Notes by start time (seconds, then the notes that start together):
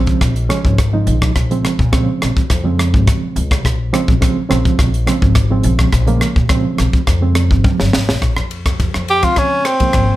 Already playing: C#3 F3 G#3 C4
0.07 kick, closed hi-hat
0.21 A#1, kick, cross-stick, closed hi-hat
0.36 closed hi-hat
0.49 C#3 F3 G#3 C#4, cross-stick, closed hi-hat
0.65 G#1, kick
0.78 kick, cross-stick, closed hi-hat
0.93 C#3 F3 G#3 D#4
1.07 A#1, closed hi-hat
1.22 kick, cross-stick
1.36 A#1, kick, cross-stick, closed hi-hat
1.51 C#3 F3 G#3 C4, closed hi-hat
1.65 cross-stick, closed hi-hat
1.79 A#2, kick
1.92 C#3 F3 G#3 C4, kick, cross-stick, closed hi-hat
2.22 A#1, cross-stick, closed hi-hat
2.37 muted upright bass stroke, kick, closed hi-hat
2.50 F2, kick, cross-stick, closed hi-hat
2.64 C#3 F3 G#3 C4
2.79 cross-stick, closed hi-hat
2.94 G#1, kick
3.07 kick, cross-stick, closed hi-hat
3.22 muted upright bass stroke
3.36 C#2, closed hi-hat
3.51 kick, cross-stick, closed hi-hat
3.65 A#1, kick, cross-stick, closed hi-hat
3.92 C#3 F3 G#3 C4, cross-stick, closed hi-hat
4.08 A#1, kick
4.20 C#3 F3 G#3 C4, kick, cross-stick, closed hi-hat
4.36 muted upright bass stroke
4.49 A#1 C#3 F3 G#3 C4, cross-stick, closed hi-hat
4.65 kick, closed hi-hat
4.79 A#1, kick, cross-stick, closed hi-hat
4.94 closed hi-hat
5.07 C#3 F3 G#3 C4, cross-stick, closed hi-hat
5.22 G#1, kick
5.35 kick, cross-stick, closed hi-hat
5.51 C#3 F3 G#3 C4
5.63 A#1, closed hi-hat
5.79 kick, cross-stick
5.92 A#1, kick, cross-stick, closed hi-hat
6.07 C#3 F3 G#3 A#3, closed hi-hat
6.21 cross-stick, closed hi-hat
6.36 A#2, kick
6.49 C#3 F3 G#3 C4, kick, cross-stick, closed hi-hat
6.78 A#1, cross-stick, closed hi-hat
6.93 muted upright bass stroke, kick, closed hi-hat
7.07 F2, kick, cross-stick, closed hi-hat
7.21 C#3 F3 G#3 C4
7.35 cross-stick, closed hi-hat
7.51 G#1, kick
7.64 kick, high tom
7.80 G1, snare
7.93 G#1, snare
8.09 A#1, snare
8.22 A#1, kick, cross-stick, ride
8.37 F2, cross-stick
8.51 ride
8.66 kick, cross-stick, ride
8.80 F2, kick, ride
8.94 F2, cross-stick
9.08 G4, ride
9.21 C#3 F3 G#3 C4 F4, kick, cross-stick, ride
9.36 C#4, kick, cross-stick, ride
9.65 C4, cross-stick, ride
9.80 C#3 F3 G#3 A#3, kick, ride
9.93 G#1, kick, cross-stick, ride